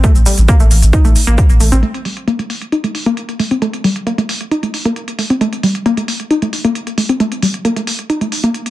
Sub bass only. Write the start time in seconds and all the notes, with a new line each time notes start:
0.15 A1
0.38 A1
0.60 A1
0.71 A1
0.82 A1
1.05 A1
1.27 A1
1.50 A1
1.60 A1
1.72 A1